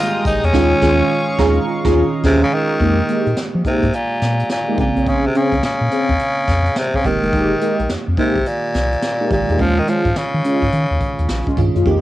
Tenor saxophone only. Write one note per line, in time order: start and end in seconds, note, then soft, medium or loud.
0.00 0.26 F4 loud
0.27 0.46 D#4 medium
0.45 1.57 C#4 loud
2.26 2.41 C3 loud
2.43 2.55 C#3 medium
2.53 3.38 D#3 loud
3.67 3.96 C3 medium
3.95 4.51 A#2 medium
4.52 4.77 A#2 medium
4.80 5.10 A#2 medium
5.09 5.28 C#3 medium
5.26 5.38 C3 medium
5.37 5.64 C#3 medium
5.65 6.80 C#3 loud
6.78 6.97 C3 medium
6.96 7.08 C#3 medium
7.06 7.90 D#3 medium
8.19 8.49 C3 medium
8.47 9.32 A#2 medium
9.32 9.62 A#2 medium
9.61 9.80 F3 loud
9.79 9.91 D#3 loud
9.89 10.19 F3 medium
10.17 11.58 C#3 medium